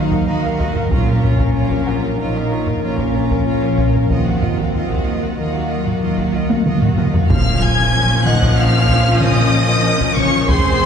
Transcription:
Already playing: D#2 D#3 F#3 A#3 D#4 F#4 A#4 C5 D#5 F5 C6
0.10 A#4 F5 F#5, taiko
0.26 D#2 D#3 A#3 F#4 D#5 F5 A#5
0.42 A#4 F5 F#5
0.58 F#4 D#5 F5, taiko
0.74 A#4 F5 F#5, taiko low-mid
0.89 A#1 A#2 F3 A#3 C#4 F4 A#4 C#5 A#5, taiko
1.06 A#4 F5
1.22 F4 C#5 A#5, taiko low-mid
1.38 A#4 F5, taiko
1.54 A#1 A#2 F4 C#5 A#5
1.70 A#4 F5, taiko
1.86 F4 C#5 F#5 A#5
2.03 A#4 F5
2.17 A#1 A#2 D#4 F4 C#5 A#5
2.35 A#4 F5
2.51 F4 C#5 A#5
2.67 A#4 F5, taiko low-mid
2.82 A#1 A#2 C#4 F4 C#5 A#5
2.99 A#4 F5, taiko
3.15 F4 C#5 A#5
3.31 A#4 F5, taiko
3.46 A#1 A#2 F4 C#5 A#5
3.62 A#4 F5
3.77 F4 C#5 A#5, taiko
3.94 A#4 F5, taiko low-mid
4.09 D#2 D#3 F#3 C4 F4 D#5 F#5, taiko
4.25 F#4 F5 F#5
4.41 F4 D#5 F#5, taiko low-mid
4.57 F#4 F5 F#5, taiko
4.74 D#2 D#3 F4 D#5 F#5
4.90 F#4 F5 F#5, taiko
5.05 F4 D#5 F#5
5.21 F#4 F5 F#5
5.38 D#2 D#3 A#3 F4 D#5 F#5
5.53 F#4 F5 F#5
5.69 F4 D#5 F#5
5.86 F#4 F5 F#5, taiko low-mid
6.01 D#2 D#3 F4 D#5 F#5
6.18 F#4 F5 F#5, taiko
6.33 F4 D#5 F#5
6.49 F#4 F5 F#5, taiko high
6.66 D#2 D#3 F4 D#5 F#5, taiko mid
6.81 F#4 F5 F#5, taiko low-mid
6.98 F4 D#5 F#5, taiko mid
7.13 F#4 F5 F#5, taiko low
7.29 A#1 A#2 F3 C#4 A#4 F5 G#5 F6, taiko, impact
7.61 G#5 G#6
8.25 D#4 D#5 F#5 F#6, taiko mid
8.42 taiko
8.57 F5 F6
8.90 taiko
9.21 D#5 D#6, taiko mid
9.37 taiko mid
9.85 A#4
10.01 taiko
10.17 C#5 C#6, taiko mid
10.48 F1 F2 G#3 C4 G#4 C5 C6, taiko

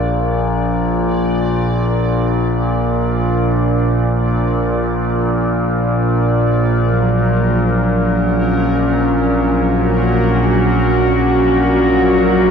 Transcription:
Already playing: A#1 A#2 D5
6.84 F#3 A#4
8.27 C#4
9.79 F#4
11.61 A#4

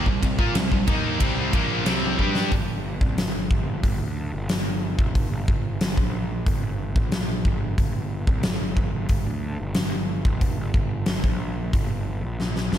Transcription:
0.06 C2 C3 G3, kick
0.22 C2 C3 G3, kick, ride
0.39 A#2 A#3 F4, kick
0.55 C2 C3 G3, snare, ride
0.72 C2 C3 G3, kick
0.87 D#2 D#3 A#3 D#4, kick, ride
1.19 C2 C3 G3 C4, kick, ride
1.53 A#1 A#2 F3 A#3, kick, ride
1.86 C2 C3 G3 C4, snare, ride
2.18 G2 G3 D4 G4, kick
2.35 snare
2.52 G1, kick, open hi-hat
2.68 G1
3.01 C2, kick
3.18 G1, snare, open hi-hat
3.35 G1
3.50 G1, kick
3.67 G1
3.83 G1, kick, open hi-hat
4.00 D2
4.33 G1
4.49 G1, snare, open hi-hat
4.98 F1, kick
5.15 kick, open hi-hat
5.30 G1
5.48 G1, kick
5.81 G1, snare, open hi-hat
5.97 A#1, kick
6.46 G1, kick, open hi-hat
6.62 G1
6.96 A#1, kick
7.12 snare, open hi-hat
7.45 G1, kick
7.78 G1, kick, open hi-hat
7.95 G1
8.27 C2, kick
8.43 G1, snare, open hi-hat
8.60 G1
8.76 G1, kick
8.93 G1
9.09 G1, kick, open hi-hat
9.26 D2
9.60 G1
9.75 G1, snare, open hi-hat
10.25 F1, kick
10.41 kick, open hi-hat
10.59 G1
10.74 G1, kick
11.06 G1, snare, open hi-hat
11.24 A#1, kick
11.73 G1, kick, open hi-hat
11.90 G1
12.22 A#1
12.40 snare
12.56 snare
12.71 G1, snare

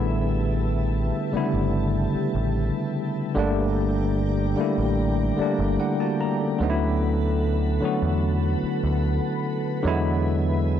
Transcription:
Already playing: A1 D3 G3 A3 B3 E4 G4 B4 E5 A5
1.32 C#3 G3 A3 B3, muted picked electric bass stroke
1.37 D3 E4
1.54 G1
2.15 muted picked electric bass stroke
2.35 A1
3.34 G1 D3 G3 A3 A#3 G4 D5 G5 A#5
3.39 D4
4.56 D3 G3 A3 A#3, muted picked electric bass stroke
4.61 E4
4.78 A1
5.37 D3 G3 A3 A#3 D5, muted picked electric bass stroke
5.42 D4
5.59 G1
5.80 G3 E4 F#5
6.00 A#3 F#4 A5
6.21 A#3 G4 A#5
6.41 C#4 A4
6.59 D2 D3 F#3 A3 B3 A4 B4 F#5 B5
6.63 D#4
6.70 E4
7.81 D3 F#3 A3 B3, muted picked electric bass stroke
7.85 F#4
8.02 E2
8.63 muted picked electric bass stroke
8.84 D2
9.83 E2 D3 F#3 G#3 B3 G#4 E5
9.88 E4

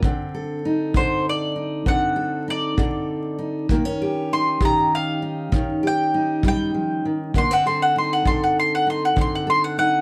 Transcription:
0.03 D3 C4, kick
0.35 A4
0.65 D#4
0.94 D3 A4 C5, kick
1.29 D5
1.56 D#4
1.86 D3 C4 F#5, kick
2.16 A4
2.48 D#4 D5
2.77 D3 A4, kick
3.38 D#4
3.69 D#3 A#3, kick
3.85 C#4
4.02 G4
4.33 D#4 C6
4.60 D#3 G4, kick
4.65 A#5
4.95 F5
5.22 D#4
5.52 D#3 C#4, kick
5.83 G4
5.87 G5
6.14 D#4
6.43 G3, kick
6.48 G5
6.74 F3
7.05 D#3
7.34 D3 A#3 C6, kick
7.51 C4 F#5
7.66 A4 C6
7.82 F#5
7.96 D#4 C6
8.13 F#5
8.25 D3 A4 C6, kick
8.44 F#5
8.59 C6
8.75 F#5
8.87 D#4 C6
9.05 F#5
9.16 D3 C4, kick
9.21 C6
9.35 F#5
9.47 A4 C6
9.64 F#5
9.78 D#4 F#5

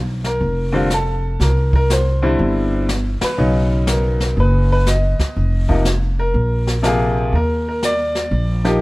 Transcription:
Already playing: B1
0.24 A#4, snare
0.41 F1, brush sweep
0.72 D3 G3 C4 F4
0.90 A4, snare, hi-hat pedal
1.40 C2 A#4, brush sweep, snare
1.73 A#4, kick
1.90 C5, snare, hi-hat pedal
2.22 D3 G3 C4 E4
2.39 G1, brush sweep
2.89 snare, hi-hat pedal
3.21 B4, muted upright bass stroke, snare, ride
3.38 B1 C#3 F#3 B3 D#4, brush sweep
3.87 A#4, snare, hi-hat pedal
4.20 snare
4.37 F#1 B4, brush sweep
4.72 B4
4.86 D#5, snare, hi-hat pedal
5.19 muted upright bass stroke, kick, snare
5.36 F1, brush sweep
5.68 C3 F3 A#3 D#4, kick
5.85 snare, hi-hat pedal
6.19 A#4
6.34 A#1, brush sweep
6.67 snare
6.83 C3 F3 A#3 F4 G#4, snare, hi-hat pedal
7.32 D#2 A#4, brush sweep
7.69 A#4
7.83 D5, snare, hi-hat pedal
8.15 snare
8.31 A#1, brush sweep
8.64 F3 A#3 D#4 G4, snare

